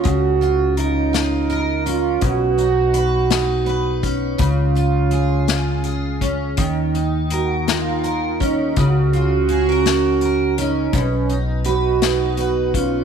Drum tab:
HH |xxxxxx|xxxxxx|xxxxxx|xxxxxx|
SD |---o--|---o--|---o--|---o--|
BD |o-----|o----o|o----o|o----o|

HH |xxxxxx|xxxxxx|
SD |---o--|---o--|
BD |o-----|o----o|